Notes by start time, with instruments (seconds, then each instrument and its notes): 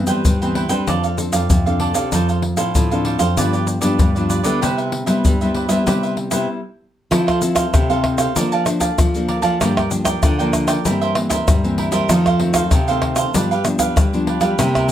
Already playing: nylon-string guitar G2 E3 B3 C4
0.07 nylon-string guitar G3, cavaquinho B4 C5 G5, pandeiro, shaker
0.25 nylon-string guitar G2 G3, pandeiro, shaker, surdo
0.42 nylon-string guitar E3 B3 C4, cavaquinho B4 C5 G5, pandeiro, shaker
0.55 cavaquinho E4 B4 C5 G5, pandeiro
0.69 nylon-string guitar G3 C4 D4 A4, cavaquinho B4 C5 G5, pandeiro, shaker
0.87 nylon-string guitar F2 F3, cavaquinho D4 A4 D5 F5, pandeiro, shaker, surdo
1.04 cavaquinho A4 D5 F5, pandeiro, shaker
1.17 nylon-string guitar C4 D4 A4, muted cavaquinho stroke, pandeiro, shaker
1.32 nylon-string guitar F2, cavaquinho A4 D5 F5, pandeiro, shaker
1.50 nylon-string guitar F2 C3, pandeiro, shaker, surdo
1.66 nylon-string guitar C4 D4 A4, cavaquinho A4 D5 F5, pandeiro, shaker
1.80 cavaquinho D4 A4 D5 F5, pandeiro
1.94 nylon-string guitar C3 C4 D4 A4, cavaquinho A4 D5 F5, pandeiro, shaker
2.12 nylon-string guitar F2 F3, cavaquinho D4 A4 C5 F5, pandeiro, shaker, surdo
2.29 cavaquinho A4 C5 F5, pandeiro, shaker
2.42 muted cavaquinho stroke, pandeiro
2.57 nylon-string guitar A2 C4 D4 A4, cavaquinho A4 C5 F5, pandeiro, shaker
2.75 nylon-string guitar A2 F3, pandeiro, shaker, surdo
2.91 nylon-string guitar C4 D4 A4, cavaquinho A4 C5 F5, pandeiro, shaker
3.05 cavaquinho D4 A4 C5 F5, pandeiro
3.19 nylon-string guitar F2, cavaquinho A4 C5 F5, pandeiro, shaker
3.37 nylon-string guitar G2 F3 B3 D4, cavaquinho F4 G4 B4 D5, pandeiro, shaker, surdo
3.53 cavaquinho G4 B4 D5, pandeiro, shaker
3.67 muted cavaquinho stroke, pandeiro, shaker
3.81 nylon-string guitar G2 F3 B3 D4, cavaquinho G4 B4 D5, pandeiro, shaker
3.99 nylon-string guitar G2 D3, pandeiro, shaker, surdo
4.15 nylon-string guitar F3 B3 D4, cavaquinho G4 B4 D5, pandeiro, shaker
4.29 cavaquinho F4 G4 B4 D5, pandeiro, shaker
4.43 nylon-string guitar D3 G3 B3 E4, cavaquinho G4 B4 D5, pandeiro, shaker
4.61 nylon-string guitar C3, cavaquinho G4 B4 C5 E5, pandeiro, shaker, surdo
4.78 cavaquinho B4 C5 E5, pandeiro, shaker
4.92 muted cavaquinho stroke, pandeiro
5.06 nylon-string guitar G3 B3 E4, cavaquinho B4 C5 E5, pandeiro, shaker
5.25 nylon-string guitar G2 G3, pandeiro, shaker, surdo
5.41 nylon-string guitar G3 B3 E4, cavaquinho B4 C5 E5, pandeiro, shaker
5.54 cavaquinho G4 B4 C5 E5, pandeiro
5.69 nylon-string guitar G3 B3 E4, cavaquinho B4 C5 E5, pandeiro, shaker
5.86 nylon-string guitar C3 G3 B3 E4, cavaquinho G4 B4 C5 E5, pandeiro, shaker, surdo
6.03 cavaquinho B4 C5 E5, pandeiro, shaker
6.17 muted cavaquinho stroke, pandeiro
6.31 nylon-string guitar C3 G3 B3 E4, cavaquinho B4 C5 E5, pandeiro, shaker
7.11 nylon-string guitar F3 C4 E4 A4, cavaquinho E4 A4 C5 F5, pandeiro, tamborim, shaker, surdo
7.27 cavaquinho A4 C5 F5, pandeiro, tamborim, shaker, surdo
7.41 nylon-string guitar C4 E4 A4, muted cavaquinho stroke, pandeiro, shaker
7.55 cavaquinho A4 C5 F5, pandeiro, tamborim, shaker, surdo
7.73 nylon-string guitar C3, cavaquinho E4 A4 C5 F5, pandeiro, tamborim, shaker, surdo
7.90 nylon-string guitar C4 E4 A4, cavaquinho A4 C5 F5, pandeiro, shaker
8.04 pandeiro, tamborim, surdo
8.18 cavaquinho A4 C5 F5, pandeiro, tamborim, shaker
8.36 nylon-string guitar F3 A#3 D4 A4, cavaquinho A#4 D5 F5 A5, pandeiro, shaker, surdo
8.52 cavaquinho D5 F5 A5, pandeiro, shaker
8.66 nylon-string guitar A#3 D4 A4, muted cavaquinho stroke, pandeiro, tamborim, shaker
8.80 cavaquinho D5 F5 A5, pandeiro, shaker, surdo
8.98 nylon-string guitar F3, pandeiro, tamborim, shaker, surdo
9.15 nylon-string guitar A#3 D4 A4, pandeiro, shaker
9.28 cavaquinho A#4 D5 F5 A5, pandeiro
9.42 nylon-string guitar F3, cavaquinho D5 F5 A5, pandeiro, shaker
9.60 nylon-string guitar G2 F3 G3 A#3 D4, cavaquinho F4 A#4 D5 G5, pandeiro, tamborim, shaker, surdo
9.77 cavaquinho A#4 D5 G5, pandeiro, tamborim, shaker, surdo
9.90 nylon-string guitar F3 A#3 D4, muted cavaquinho stroke, pandeiro, shaker
10.05 cavaquinho A#4 D5 G5, pandeiro, tamborim, shaker, surdo
10.22 nylon-string guitar D3, cavaquinho F4 A#4 D5 G5, pandeiro, tamborim, shaker, surdo
10.39 nylon-string guitar F3 A#3 D4, cavaquinho A#4 D5 G5, pandeiro, shaker
10.53 pandeiro, tamborim, shaker, surdo
10.67 cavaquinho A#4 D5 G5, pandeiro, tamborim, shaker
10.85 nylon-string guitar G2 E3 G3 A#3 C4, cavaquinho E4 A#4 C5 E5, pandeiro, shaker, surdo
11.01 cavaquinho A#4 C5 E5, pandeiro, shaker
11.15 nylon-string guitar E3 A#3 C4, muted cavaquinho stroke, pandeiro, tamborim
11.29 cavaquinho A#4 C5 E5, pandeiro, shaker, surdo
11.48 nylon-string guitar G2 G3, pandeiro, tamborim, shaker, surdo
11.64 nylon-string guitar E3 A#3 C4, pandeiro, shaker
11.78 cavaquinho E4 A#4 C5 E5, pandeiro, surdo
11.92 nylon-string guitar G3, cavaquinho A#4 C5 E5, pandeiro, shaker
12.09 nylon-string guitar F2 D#3 F3 A3 C4, cavaquinho D#4 A4 C5 F5, pandeiro, tamborim, shaker, surdo
12.26 cavaquinho A4 C5 F5, pandeiro, tamborim, shaker, surdo
12.39 nylon-string guitar D#3 A3 C4, muted cavaquinho stroke, pandeiro
12.54 cavaquinho A4 C5 F5, pandeiro, tamborim, shaker, surdo
12.71 nylon-string guitar C3, cavaquinho D#4 A4 C5 F5, pandeiro, tamborim, shaker, surdo
12.88 nylon-string guitar D#3 A3 C4, cavaquinho A4 C5 F5, pandeiro, shaker
13.02 pandeiro, tamborim, surdo
13.16 cavaquinho A4 C5 F5, pandeiro, tamborim, shaker
13.34 nylon-string guitar G2 F3 G3 B3 D4, cavaquinho D4 G4 B4 F5, pandeiro, shaker, surdo
13.51 cavaquinho G4 B4 F5, pandeiro, shaker
13.64 nylon-string guitar F3 B3 D4, muted cavaquinho stroke, pandeiro, tamborim, shaker
13.79 cavaquinho G4 B4 F5, pandeiro, shaker, surdo
13.96 nylon-string guitar D3 G3, pandeiro, tamborim, shaker, surdo
14.13 nylon-string guitar F3 B3 D4, pandeiro, shaker
14.27 cavaquinho D4 G4 B4 F5, pandeiro
14.41 nylon-string guitar G3, cavaquinho G4 B4 F5, pandeiro, shaker
14.58 nylon-string guitar C3 G3 A#3 E4, cavaquinho E4 A#4 C5 E5, pandeiro, tamborim, shaker, surdo
14.75 cavaquinho A#4 C5 E5, pandeiro, tamborim, shaker, surdo
14.89 muted cavaquinho stroke, pandeiro, shaker